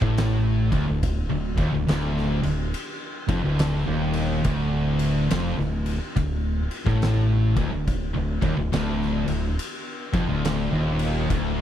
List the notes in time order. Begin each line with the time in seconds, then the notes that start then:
0.02 A1 A2, kick
0.17 snare, ride
0.72 D1 D2, kick, ride
0.88 D1 D2
1.03 kick, ride
1.30 D1 D2
1.57 D#1 D#2, kick, ride
1.73 D1 D2
1.87 D1 D2, snare, ride
2.17 snare
2.42 D1 D2, ride
2.74 ride
3.28 F1 F2, kick, ride
3.43 D1 D2
3.59 snare, ride
3.86 D#1 D#2
4.14 ride
4.44 D1 D2, kick, ride
4.99 ride
5.30 F1 F2, snare, ride
5.57 D1 D2, snare
5.86 ride
6.16 D1 D2, kick, ride
6.71 ride
6.85 A1 A2, kick, snare
7.02 snare, ride
7.56 D1 D2, kick, ride
7.71 D1 D2
7.87 kick, ride
8.14 D1 D2
8.42 D#1 D#2, kick, ride
8.57 D1 D2
8.72 D1 D2, snare, ride
9.01 snare
9.27 D1 D2, ride
9.59 ride
10.13 F1 F2, kick, ride
10.29 D1 D2
10.45 snare, ride
10.72 D#1 D#2
10.99 ride
11.30 D1 D2, kick, ride